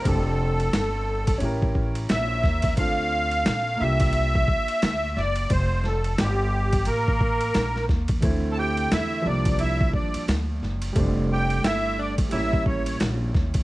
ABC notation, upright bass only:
X:1
M:4/4
L:1/8
Q:"Swing 16ths" 1/4=88
K:F
V:1 name="Upright bass" clef=bass
F,,,2 G,,,2 A,,,2 B,,, _E,, | D,,2 B,,, C,,2 z D,, _G,,, | F,,,2 G,,,2 A,,,2 B,,, _E,, | D,,2 E,, C,,2 z D,, _G,,, |
F,,,2 G,,,2 A,,,2 B,,, _E,, |]